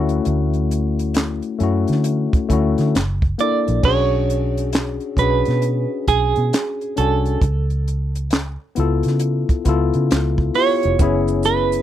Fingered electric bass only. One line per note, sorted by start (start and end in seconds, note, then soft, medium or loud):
0.00 0.19 D2 medium
0.27 1.40 D2 loud
1.60 1.84 F#2 medium
1.89 2.27 D3 medium
2.51 2.74 D2 medium
2.79 2.92 D3 medium
2.95 3.33 F#1 medium
3.68 3.82 A#1 medium
3.84 4.98 B1 medium
5.17 5.42 B1 medium
5.48 5.85 B2 medium
6.09 6.32 B1 medium
6.38 6.51 B2 medium
6.98 7.36 C2 medium
7.42 8.56 C#2 medium
8.78 9.01 C#2 medium
9.06 9.43 C#3 medium
9.66 9.90 C#2 medium
9.95 10.09 C#3 medium
10.11 10.49 C#2 medium
10.85 10.98 F1 medium
11.00 11.82 F#1 medium